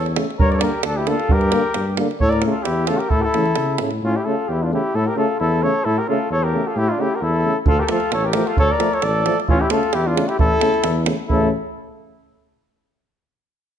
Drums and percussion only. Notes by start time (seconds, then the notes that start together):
0.06 davul high
0.16 davul high
0.30 davul high
0.39 davul low
0.52 davul high
0.61 davul high
0.83 davul high
1.07 davul high
1.20 davul high
1.29 davul low
1.41 davul high
1.52 davul high
1.74 davul high
1.97 davul high
2.11 davul high
2.20 davul low
2.33 davul high
2.42 davul high
2.65 davul high
2.87 davul high
3.00 davul high
3.10 davul low
3.34 davul high
3.46 davul high
3.56 davul high
3.78 davul high
3.91 davul high
7.66 davul low
7.89 davul high
8.00 davul high
8.12 davul high
8.33 davul high
8.47 davul high
8.57 davul low
8.80 davul high
8.93 davul high
9.02 davul high
9.26 davul high
9.40 davul high
9.48 davul low
9.70 davul high
9.83 davul high
9.93 davul high
10.17 davul high
10.29 davul high
10.39 davul low
10.61 davul high
10.74 davul high
10.84 davul high
11.06 davul high
11.30 davul low